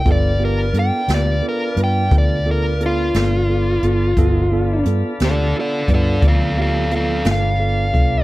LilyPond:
<<
  \new Staff \with { instrumentName = "Lead electric guitar" } { \time 12/8 \key g \mixolydian \tempo 4. = 58 d''8 bes'8 g''8 d''8 bes'8 g''8 d''8 bes'8 f'2~ | f'4 r8 <a' d''>8 <a' d''>8 <a' d''>8 <a' f''>8 <a' f''>8 <a' f''>8 f''4. | }
  \new Staff \with { instrumentName = "Tine electric piano" } { \time 12/8 \key g \mixolydian <b f' a'>8 <b f' g'>8 <b f' a'>8 <b f' g'>8 <b f' a'>8 <b f' b'>8 <b f' a'>8 <b f' a'>8 <b f' a'>8 <b f' a'>8 <b f' a'>8 <b f' a'>8 | <b f' a'>8 <b f' a'>8 <b f' a'>8 <b f' g'>8 <b f' a'>8 <b f' b'>8 <b f' a'>8 <b f' g'>8 <b f' a'>8 <b f' a'>8 <b f' a'>8 <b f' a'>8 | }
  \new Staff \with { instrumentName = "Tonewheel organ" } { \time 12/8 \key g \mixolydian <b d' f' a''>1. | <fis ees' bes' c''>8 <d' f' a' b'>1~ <d' f' a' b'>4. | }
  \new Staff \with { instrumentName = "Fingered electric bass" } { \clef bass \time 12/8 \key g \mixolydian g,,4 g,16 r16 d,8 r8 g,8 d,4. g,,4 g,,8 | g,,4 g,16 r16 d,8 r8 g,8 d,4. g,,4 c,8 | }
  \new DrumStaff \with { instrumentName = "Drums" } \drummode { \time 12/8 <hh bd>4 hh8 <hh sn>4 hh8 <hh bd>4 hh8 <hh sn>4 hh8 | <hh bd>4 hh8 <hh sn>4 <hh bd>8 <hh bd>4 hh8 <hh sn>4 <hh bd>8 | }
>>